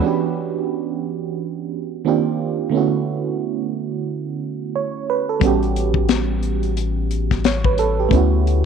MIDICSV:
0, 0, Header, 1, 4, 480
1, 0, Start_track
1, 0, Tempo, 674157
1, 14, Time_signature, 4, 2, 24, 8
1, 6160, End_track
2, 0, Start_track
2, 0, Title_t, "FM electric piano"
2, 0, Program_c, 0, 5
2, 0, Control_c, 0, 64, 127
2, 0, Note_on_c, 0, 52, 52
2, 3, Note_on_c, 0, 59, 51
2, 14, Note_on_c, 0, 61, 45
2, 23, Control_c, 0, 64, 0
2, 25, Note_on_c, 0, 62, 46
2, 33, Note_on_c, 0, 66, 48
2, 47, Note_on_c, 0, 67, 63
2, 161, Control_c, 0, 64, 127
2, 1416, Note_off_c, 0, 52, 0
2, 1420, Note_off_c, 0, 59, 0
2, 1425, Note_off_c, 0, 61, 0
2, 1431, Note_off_c, 0, 62, 0
2, 1435, Note_off_c, 0, 66, 0
2, 1442, Note_off_c, 0, 67, 0
2, 1458, Note_on_c, 0, 51, 50
2, 1464, Control_c, 0, 64, 0
2, 1464, Note_on_c, 0, 58, 44
2, 1467, Note_on_c, 0, 60, 45
2, 1474, Note_on_c, 0, 62, 48
2, 1478, Note_on_c, 0, 65, 47
2, 1484, Note_on_c, 0, 67, 53
2, 1609, Control_c, 0, 64, 127
2, 1920, Note_on_c, 0, 50, 52
2, 1931, Note_on_c, 0, 57, 54
2, 1936, Note_off_c, 0, 51, 0
2, 1939, Note_off_c, 0, 58, 0
2, 1940, Note_off_c, 0, 60, 0
2, 1940, Note_on_c, 0, 59, 48
2, 1942, Control_c, 0, 64, 0
2, 1944, Note_off_c, 0, 62, 0
2, 1946, Note_off_c, 0, 65, 0
2, 1949, Note_off_c, 0, 67, 0
2, 1952, Note_on_c, 0, 61, 49
2, 1962, Note_on_c, 0, 64, 49
2, 1974, Note_on_c, 0, 66, 59
2, 2069, Control_c, 0, 64, 127
2, 3386, Note_on_c, 0, 73, 41
2, 3608, Note_off_c, 0, 73, 0
2, 3629, Note_on_c, 0, 71, 58
2, 3756, Note_off_c, 0, 71, 0
2, 3768, Note_on_c, 0, 69, 51
2, 3818, Note_off_c, 0, 50, 0
2, 3824, Note_off_c, 0, 57, 0
2, 3828, Note_off_c, 0, 59, 0
2, 3835, Note_off_c, 0, 61, 0
2, 3840, Note_off_c, 0, 64, 0
2, 3843, Note_on_c, 0, 55, 56
2, 3846, Note_off_c, 0, 66, 0
2, 3852, Note_on_c, 0, 59, 52
2, 3862, Control_c, 0, 64, 0
2, 3869, Note_on_c, 0, 61, 55
2, 3881, Note_on_c, 0, 66, 54
2, 3897, Note_on_c, 0, 67, 67
2, 3990, Note_off_c, 0, 69, 0
2, 3993, Control_c, 0, 64, 127
2, 5279, Note_off_c, 0, 66, 0
2, 5287, Note_off_c, 0, 67, 0
2, 5307, Note_on_c, 0, 73, 44
2, 5435, Note_off_c, 0, 73, 0
2, 5448, Note_on_c, 0, 71, 52
2, 5536, Note_off_c, 0, 71, 0
2, 5547, Note_on_c, 0, 69, 62
2, 5675, Note_off_c, 0, 69, 0
2, 5694, Note_on_c, 0, 67, 51
2, 5740, Note_off_c, 0, 55, 0
2, 5744, Note_off_c, 0, 59, 0
2, 5753, Note_off_c, 0, 61, 0
2, 5758, Note_on_c, 0, 57, 51
2, 5773, Note_on_c, 0, 59, 54
2, 5783, Control_c, 0, 64, 0
2, 5786, Note_on_c, 0, 61, 53
2, 5800, Note_on_c, 0, 64, 55
2, 5817, Note_on_c, 0, 66, 60
2, 5904, Control_c, 0, 64, 127
2, 5913, Note_off_c, 0, 67, 0
2, 6160, Note_off_c, 0, 57, 0
2, 6160, Note_off_c, 0, 59, 0
2, 6160, Note_off_c, 0, 61, 0
2, 6160, Note_off_c, 0, 64, 0
2, 6160, Note_off_c, 0, 66, 0
2, 6160, End_track
3, 0, Start_track
3, 0, Title_t, "Analog synth bass"
3, 0, Program_c, 1, 38
3, 3859, Note_on_c, 1, 33, 77
3, 5748, Note_off_c, 1, 33, 0
3, 5778, Note_on_c, 1, 38, 80
3, 6160, Note_off_c, 1, 38, 0
3, 6160, End_track
4, 0, Start_track
4, 0, Title_t, "Drums"
4, 3854, Note_on_c, 9, 36, 81
4, 3863, Note_on_c, 9, 42, 60
4, 3925, Note_off_c, 9, 36, 0
4, 3934, Note_off_c, 9, 42, 0
4, 4006, Note_on_c, 9, 42, 33
4, 4077, Note_off_c, 9, 42, 0
4, 4103, Note_on_c, 9, 42, 56
4, 4175, Note_off_c, 9, 42, 0
4, 4230, Note_on_c, 9, 36, 68
4, 4301, Note_off_c, 9, 36, 0
4, 4334, Note_on_c, 9, 42, 66
4, 4337, Note_on_c, 9, 38, 87
4, 4405, Note_off_c, 9, 42, 0
4, 4408, Note_off_c, 9, 38, 0
4, 4576, Note_on_c, 9, 42, 50
4, 4647, Note_off_c, 9, 42, 0
4, 4720, Note_on_c, 9, 42, 36
4, 4791, Note_off_c, 9, 42, 0
4, 4820, Note_on_c, 9, 42, 62
4, 4891, Note_off_c, 9, 42, 0
4, 5061, Note_on_c, 9, 42, 60
4, 5132, Note_off_c, 9, 42, 0
4, 5204, Note_on_c, 9, 38, 25
4, 5205, Note_on_c, 9, 36, 71
4, 5275, Note_off_c, 9, 38, 0
4, 5276, Note_off_c, 9, 36, 0
4, 5300, Note_on_c, 9, 42, 71
4, 5305, Note_on_c, 9, 38, 80
4, 5371, Note_off_c, 9, 42, 0
4, 5376, Note_off_c, 9, 38, 0
4, 5443, Note_on_c, 9, 36, 77
4, 5514, Note_off_c, 9, 36, 0
4, 5539, Note_on_c, 9, 42, 72
4, 5610, Note_off_c, 9, 42, 0
4, 5774, Note_on_c, 9, 36, 89
4, 5786, Note_on_c, 9, 42, 54
4, 5845, Note_off_c, 9, 36, 0
4, 5857, Note_off_c, 9, 42, 0
4, 6032, Note_on_c, 9, 42, 56
4, 6103, Note_off_c, 9, 42, 0
4, 6160, End_track
0, 0, End_of_file